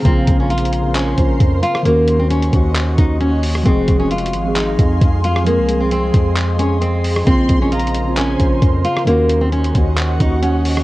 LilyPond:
<<
  \new Staff \with { instrumentName = "Violin section" } { \time 4/4 \key bes \minor \tempo 4 = 133 r1 | r1 | r1 | r1 |
c'''4 bes''4 aes''4 r4 | r2 ges''2 | }
  \new Staff \with { instrumentName = "Ambient pad" } { \time 4/4 \key bes \minor << { <bes' c'''>1 | <ges' des'''>1 | <aes' c'''>1~ | <aes' c'''>1 |
<bes' c'''>1 | <ges' des'''>1 | } \\ { c''1 | ees''1 | f''1 | ees''1 |
c''1 | ees''1 | } >> }
  \new Staff \with { instrumentName = "Nylon-string guitar" } { \time 4/4 \key bes \minor c'8. des'16 f'4 des'4. f'8 | bes8. c'16 des'4. ees'8 des'4 | c'8. des'16 f'4 ees'4. f'8 | bes8. c'16 c'4. des'8 c'4 |
c'8. des'16 f'4 des'4. f'8 | bes8. c'16 des'4. ees'8 des'4 | }
  \new Staff \with { instrumentName = "Synth keys" } { \time 4/4 \key bes \minor <des bes c' f'>8. <des bes c' f'>4 <des bes c' f'>8. <des bes f' c''>4~ <des bes f' c''>16 r16 | <ees bes des' ges'>4~ <ees bes des' ges'>16 r16 <ees bes des' ges'>4 <ees bes des' ges'>4~ <ees bes des' ges'>16 r16 | <f aes c' aes'>8. <f aes c' aes'>4 <f aes c' aes'>8. <f aes c' aes'>4~ <f aes c' aes'>16 r16 | <f aes c' aes'>4~ <f aes c' aes'>16 r16 <f aes c' aes'>4 <f aes c' aes'>4~ <f aes c' aes'>16 r16 |
<des bes c' f'>8. <des bes c' f'>4 <des bes c' f'>8. <des bes f' c''>4~ <des bes f' c''>16 r16 | <ees bes des' ges'>4~ <ees bes des' ges'>16 r16 <ees bes des' ges'>4 <ees bes des' ges'>4~ <ees bes des' ges'>16 r16 | }
  \new Staff \with { instrumentName = "808-style bass" } { \clef bass \time 4/4 \key bes \minor bes,,8 bes,,2 bes,,8 f,8 r8 | ees,4. ees,4 ees,4. | f,,8 f,,4 aes,,4 f,8 f,4~ | f,16 c,4~ c,16 f,2~ f,8 |
bes,,8 bes,,2 bes,,8 f,8 r8 | ees,4. ees,4 ees,4. | }
  \new DrumStaff \with { instrumentName = "Drums" } \drummode { \time 4/4 <hh bd>8 <hh bd>8 \tuplet 3/2 { hh16 hh16 hh16 hh16 r16 r16 } <hc hh>8 <hh bd>8 <hh bd>8 hh16 ss16 | hh8 hh8 hh16 hh16 <hh bd>8 <hc hh>8 <hh bd>8 hh8 hho16 ss16 | <hh bd>8 <hh bd>8 \tuplet 3/2 { hh16 hh16 hh16 hh16 r16 r16 } <hc hh>8 <hh bd>8 <hh bd>8 hh16 ss16 | hh8 hh8 hh8 <hh bd>8 <hc hh>8 hh8 hh8 hho16 ss16 |
<hh bd>8 <hh bd>8 \tuplet 3/2 { hh16 hh16 hh16 hh16 r16 r16 } <hc hh>8 <hh bd>8 <hh bd>8 hh16 ss16 | hh8 hh8 hh16 hh16 <hh bd>8 <hc hh>8 <hh bd>8 hh8 hho16 ss16 | }
>>